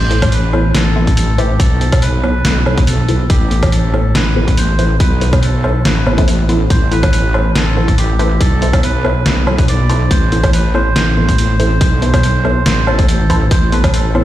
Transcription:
Already playing: A1 C5
0.11 B3 E4 A4 C5, closed hi-hat
0.22 kick, closed hi-hat, low woodblock
0.32 B4, closed hi-hat
0.53 B3 E4 A4 C5, low woodblock
0.75 A1 A4, snare, closed hi-hat
0.96 B3 E4 A4 C5
1.07 kick, closed hi-hat
1.17 closed hi-hat
1.38 E4 G4 A4 B4 C5, closed hi-hat
1.60 B1 A4, kick, closed hi-hat
1.81 B3 E4 A4 C5, closed hi-hat
1.92 kick, closed hi-hat, low woodblock
2.02 B4, closed hi-hat
2.23 B3 E4 A4 C5, low woodblock
2.45 B1, snare, closed hi-hat
2.66 B3 E4 A4 C5, low woodblock
2.78 kick, closed hi-hat
2.87 A4, closed hi-hat
3.08 E4 A4 B4 C5, closed hi-hat
3.30 A1 G4, kick, closed hi-hat
3.51 B3 E4 A4 C5, closed hi-hat
3.63 kick, closed hi-hat, low woodblock
3.72 A4, closed hi-hat
3.94 B3 E4 A4 C5, low woodblock
4.15 A1 B4, snare, closed hi-hat
4.36 B3 E4 A4 C5
4.48 kick, closed hi-hat
4.57 C5, closed hi-hat
4.79 E4 A4 B4 C5, closed hi-hat
5.00 B1 B4, kick, closed hi-hat
5.21 B3 E4 A4 C5, closed hi-hat
5.33 kick, closed hi-hat, low woodblock
5.43 A4, closed hi-hat
5.64 B3 E4 A4 C5, low woodblock
5.85 A1 B4, snare, closed hi-hat
6.07 B3 E4 A4 C5, low woodblock
6.18 B3 E4 A4 C5, kick, closed hi-hat
6.28 closed hi-hat
6.49 B3 E4 A4 C5, closed hi-hat
6.70 A1 C5, kick, closed hi-hat
6.92 B3 E4 A4 B4 C5, closed hi-hat
7.03 kick, closed hi-hat, low woodblock
7.13 closed hi-hat
7.34 B3 E4 A4 C5, low woodblock
7.56 A1 A4, snare, closed hi-hat
7.77 B3 E4 A4 C5
7.88 kick, closed hi-hat
7.98 G4, closed hi-hat
8.19 E4 A4 B4 C5, closed hi-hat
8.41 B1 A4, kick, closed hi-hat
8.62 B3 E4 A4 C5, closed hi-hat
8.73 kick, closed hi-hat, low woodblock
8.83 B4, closed hi-hat
9.04 B3 E4 A4 C5, low woodblock
9.26 B1, snare, closed hi-hat
9.47 B3 E4 A4 C5, low woodblock
9.58 kick, closed hi-hat
9.68 D5, closed hi-hat
9.89 E4 A4 B4 C5, closed hi-hat
10.11 A1 C5, kick, closed hi-hat
10.32 B3 E4 A4 C5, closed hi-hat
10.44 kick, closed hi-hat, low woodblock
10.53 B4, closed hi-hat
10.75 B3 E4 A4 C5, low woodblock
10.96 A1, snare, closed hi-hat
11.17 B3 E4 A4 C5
11.29 kick, closed hi-hat
11.38 closed hi-hat
11.60 C4 E4 A4 C5, closed hi-hat
11.81 B1, kick, closed hi-hat
12.02 B3 E4 A4 C5, closed hi-hat
12.14 kick, closed hi-hat, low woodblock
12.23 closed hi-hat
12.45 B3 E4 A4 C5, low woodblock
12.66 A1, snare, closed hi-hat
12.87 B3 E4 A4 C5, low woodblock
12.99 kick, closed hi-hat
13.09 closed hi-hat
13.30 E4 A4 B4 C5, kick, closed hi-hat
13.51 A1 C4 C5 B5, kick, closed hi-hat
13.72 B3 E4 A4 B4 C5, closed hi-hat
13.84 kick, closed hi-hat, low woodblock
13.94 A4, closed hi-hat
14.15 B3 E4 A4 C5, low woodblock

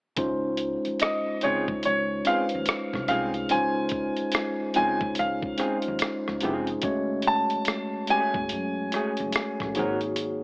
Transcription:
0.16 C#2 G#3 C#4 D#4 F4 C5, kick, closed hi-hat
0.57 closed hi-hat
0.85 muted upright bass stroke, closed hi-hat
1.00 D#5, muted clean electric guitar stroke, cross-stick, closed hi-hat
1.41 C#2 G#3 C4 C#4 D#4 F4 G#4 C#5, closed hi-hat
1.68 C#3, kick
1.83 C#2 C#5, closed hi-hat
2.25 G#3 C4 C#4 D#4 F4 G#4 B4 F5, cross-stick, closed hi-hat
2.34 C5
2.49 closed hi-hat
2.54 D#2
2.66 muted clean electric guitar stroke, cross-stick, closed hi-hat
2.94 C2, kick, cross-stick
3.08 C2 G#3 C4 C#4 D#4 F4 G#4 F5, closed hi-hat
3.34 closed hi-hat
3.49 G#3 C#4 D#4 F4 C5 G#5, closed hi-hat
3.54 C#2
3.89 kick, closed hi-hat
4.17 closed hi-hat
4.21 muted upright bass stroke
4.32 muted clean electric guitar stroke, cross-stick, closed hi-hat
4.74 G#3 C4 C#4 D#4 F4 C#5 G#5, closed hi-hat
4.78 C#2 G#4
5.01 C#3, kick
5.15 closed hi-hat
5.19 C#2 F5
5.42 kick
5.58 G#3 C4 C#4 D#4 F4 G#4 C5, cross-stick, closed hi-hat
5.82 closed hi-hat
5.88 D#2
5.99 cross-stick, closed hi-hat
6.03 muted clean electric guitar stroke
6.28 C#2, cross-stick
6.40 G#3 C4 C#4 D#4 F4 G#4, closed hi-hat
6.44 F1 G#4
6.67 closed hi-hat
6.82 F#1 G#3 A3 C#4 F#4 C#5, kick, closed hi-hat
7.22 closed hi-hat
7.27 A5
7.50 closed hi-hat
7.54 muted upright bass stroke
7.65 muted clean electric guitar stroke, cross-stick, closed hi-hat
8.07 A3 C#4 F#4 G#4 G#5, muted upright bass stroke, closed hi-hat
8.11 C#5
8.34 F#1, kick
8.49 F#2, closed hi-hat
8.92 G#3 A3 C#4 F#4 G#4 C#5, cross-stick, closed hi-hat
8.96 A3 G#4
9.17 F#1, closed hi-hat
9.32 cross-stick, closed hi-hat
9.37 muted clean electric guitar stroke
9.60 A1, kick, cross-stick
9.75 G#1 A#3 C#4 D#4 F#4 G#4 C5, closed hi-hat
9.79 F#4 A#4
9.83 C#5
10.01 closed hi-hat
10.16 closed hi-hat

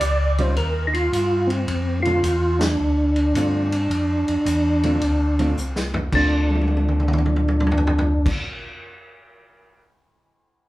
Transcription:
Already playing: D5
0.01 C#2, kick, hi-hat pedal, ride
0.38 D#3 G3 C#4 F4 C5, ride
0.56 D#2 A#4, kick, ride
0.87 D#4
0.94 F4, ride
1.12 G2, kick, hi-hat pedal, ride
1.47 C4, ride
1.68 F2, kick, ride
2.03 D3 F4, ride
2.07 A3 C4 F4
2.23 E2, kick, hi-hat pedal, ride
2.59 D4, snare, ride
2.79 D2
3.16 ride
3.34 G2 D3 A3 C4 F4, kick, hi-hat pedal, ride
3.72 ride
3.90 F2, kick, ride
4.28 F2, ride
4.46 E2, kick, hi-hat pedal, ride
4.83 D3 A3 C4 F4, ride
5.01 D2, kick, ride
5.39 D3 A3 C4 F4, ride
5.57 C2, hi-hat pedal
5.76 snare
5.94 floor tom
6.12 D2 D3 A3 C4 D4 F4, kick, crash
6.50 high tom
6.55 high tom
6.61 high tom
6.68 high tom
6.77 high tom
6.88 mid tom
7.00 mid tom
7.08 mid tom
7.13 mid tom
7.18 mid tom
7.26 mid tom
7.36 mid tom
7.48 mid tom
7.60 mid tom
7.67 mid tom
7.72 floor tom
7.78 floor tom
7.87 floor tom
7.99 floor tom
8.26 kick, crash

